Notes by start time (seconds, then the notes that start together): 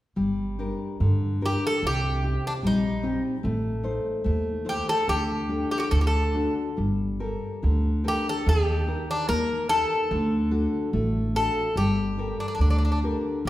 0.16 G1 G3
0.59 D4 G4 A#4
1.00 G2 D3
1.41 D4 G4 A#4
1.46 G4
1.67 A4
1.83 C2 C3
1.87 G4
2.24 C4 D#4 G4
2.47 D4
2.63 A#1 G3 D#4
3.03 C4 D#4 G4
3.43 A1 A3
3.83 D#4 A4 C5
4.24 D#2 A3
4.65 D#4 A4 C5
4.69 G4
4.89 A4
5.07 D2 D3 G4
5.49 D4 G4 A4
5.71 G4
5.78 F#4 G4
5.91 D2 D3 A4
6.01 G4
6.07 A4
6.34 D4 F#4 A4
6.77 G1 G3
7.20 G4 A4 A#4
7.63 D2 D3
8.04 G4 A4 A#4
8.08 G4
8.29 A4
8.46 D#2 D#3 G4
8.87 D#4 G4 A#4
9.11 D4
9.29 D#2 A#3 A#4
9.69 D#4 G4 A4
10.11 D2 D3
10.51 D4 F#4 A4
10.93 A1 A3
11.35 D4 F#4 A4
11.76 G1 G3 G4
12.18 G4 A4 A#4
12.40 D4
12.48 D4
12.55 D4
12.59 D2 D3 D4
12.70 D4
12.78 D4
12.85 D4
12.92 D4
13.03 G4 A4 A#4
13.45 A#1 A#3